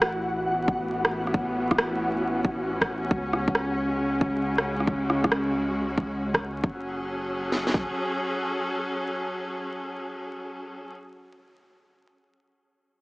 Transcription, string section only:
Already playing: A2 E3 E4 F#4
0.46 B3
1.19 C#4
3.11 C#3
3.72 G#3
4.71 F#4
6.64 F#3
6.73 C#4
6.80 G#4 A4

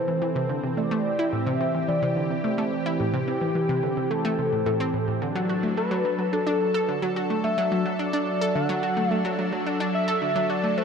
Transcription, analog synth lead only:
Already playing: C5
0.77 D5
1.32 E5
1.88 D5
2.99 G4
4.10 A4
4.66 A4
5.77 B4
6.33 A4
7.44 E5
8.00 D5
8.55 F#5
9.12 E5
9.95 E5
10.50 D5
10.77 C5

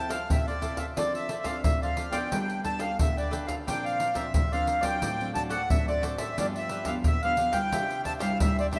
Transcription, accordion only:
Already playing: A5
0.11 F5
0.31 E5
0.47 D5
0.78 E5
0.97 D5
1.15 E5
1.44 F5
1.65 E5
1.83 F5
2.12 G5
2.65 A5
2.81 F5
3.01 E5
3.18 D5
3.47 F5
3.68 G5
3.85 F5
4.15 E5
4.35 E5
4.53 F5
4.83 G5
5.35 A5
5.50 F#5
5.70 E5
5.89 D5
6.19 E5
6.39 D5
6.57 E5
6.87 F5
7.07 E5
7.24 F5
7.53 G5
8.05 A5
8.22 F5
8.42 E5
8.60 D5
8.76 E5

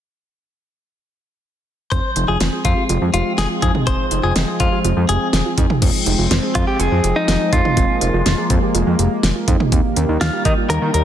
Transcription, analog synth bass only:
1.92 F1
2.16 F1
2.28 F1
2.41 F1
2.65 F2
2.89 F1
3.02 F2
3.14 F1
3.38 F1
3.62 F2
3.87 F1
4.11 F1
4.24 F1
4.36 F1
4.60 F2
4.84 F1
4.97 F2
5.09 F1
5.33 F1
5.58 F2
5.82 F1
6.06 F1
6.19 F1
6.31 F1
6.55 F2
6.80 F1
6.92 F2
7.04 F1
7.28 F1
7.53 F2
7.77 F1
8.01 F1
8.14 F1
8.26 F1
8.50 F2
8.75 F1
8.87 F2
8.99 F1
9.23 F1
9.48 F2
9.72 D#2
9.97 D#2
10.09 D#2
10.21 D#2
10.45 D#3
10.70 D#2
10.82 D#3
10.94 D#2

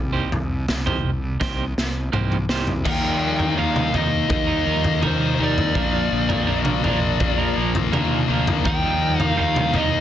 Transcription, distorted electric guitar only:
2.84 D#3 A#3 D#4
3.57 D#3 A#3 D#4
3.93 D#3 A#3 D#4
4.29 D#3 A#3 D#4
5.02 D#3 A#3 D#4
5.38 D#3 A#3 D#4
5.75 A#2 F3 A#3
6.48 A#2 F3 A#3
6.83 A#2 F3 A#3
7.20 A#2 F3 A#3
7.92 A#2 F3 A#3
8.28 A#2 F3 A#3
8.65 D#3 A#3 D#4
9.37 D#3 A#3 D#4
9.73 D#3 A#3 D#4

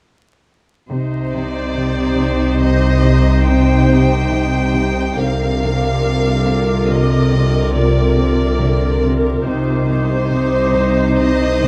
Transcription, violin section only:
1.33 D5
2.62 D#5
3.46 G5
5.18 F5
6.88 D#5
7.76 D5
9.89 C5
11.18 D#5

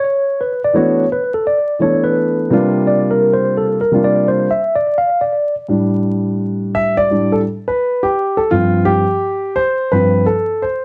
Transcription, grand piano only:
0.73 E3 A3 B3 D4 F#4
1.79 E3 A3 B3 D4 A4
2.50 C3 G3 A#3 D4 F4
3.91 C3 G3 A#3 D4 F4
5.68 A2 G3 D4
6.75 E5
6.97 D5
7.10 A2 G3 D4
7.32 A4
7.68 B4
8.03 G4
8.37 A4
8.51 G2 F3 C4 F4
8.85 G4
9.56 C5
9.92 G2 F3 C4 B4
10.26 A4
10.62 C5

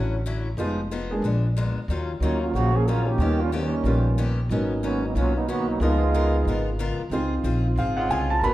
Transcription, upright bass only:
Already playing: A1
0.57 F1
1.22 A#1
1.75 muted upright bass stroke
1.88 D#2
2.20 D2
2.54 A#1
3.18 D#2
3.84 A#1
4.49 G#1
5.15 B1
5.80 C#2
6.45 G#1
6.98 muted upright bass stroke
7.10 C#2
7.44 A#1
7.76 G#1
8.09 C2
8.41 G#1

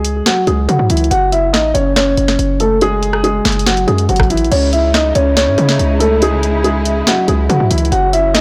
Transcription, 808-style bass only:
Already playing: C#2
0.47 C#2
0.69 C#3
0.79 G#2
0.90 C#2
1.11 F#1
1.54 A1
1.75 F#1
2.18 F#1
2.39 F#1
3.45 F#1
3.88 F#2
4.09 F#1
4.30 A1
4.52 C#2
5.15 C#2
5.47 G#2
5.58 C#3
5.79 C#2
7.28 C#2
7.49 C#3
7.60 G#2
7.71 C#2
7.92 F#1
8.35 A1

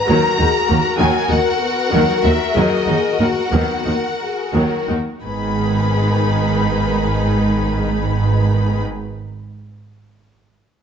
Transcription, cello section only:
0.10 D#2
0.40 D#2
0.70 D#2
1.00 D#2
1.31 D#2
1.93 D#2
2.25 D#2
2.56 D#2
2.88 D#2
3.20 D#2
3.53 D#2
3.86 D#2
4.54 D#2
4.89 D#2
5.25 G#2

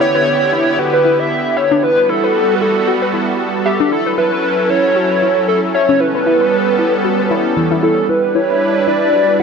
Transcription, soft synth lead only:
0.01 C#5
0.79 B4
1.19 E5
1.57 C#5
1.83 B4
2.09 A4
2.55 B4
2.62 A4
3.66 G4
3.92 A4
4.18 B4
4.70 C#5
5.48 A4
5.74 C#5
6.00 B4
7.83 A4
8.09 B4
8.35 C#5
8.87 D5
9.40 F#5

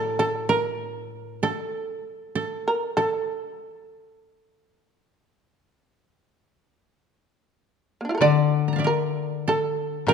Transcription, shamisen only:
Already playing: A4
0.19 A4
0.49 A#4
1.43 A4
2.68 A#4
2.97 A4
8.01 A#3
8.05 D4
8.09 E4 F4
8.15 A4 A#4
8.22 D5
8.87 A#4
9.49 A4
10.08 A#4

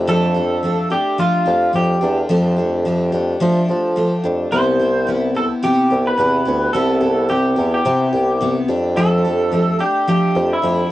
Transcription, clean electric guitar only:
0.09 A4
0.92 G4
1.20 F4
1.76 G4
4.52 C5
5.37 A4
5.64 G4
6.07 B4
6.18 B4
6.73 A4
7.30 G4
7.74 G4
8.97 A4
9.81 G4
10.09 G4
10.53 E4

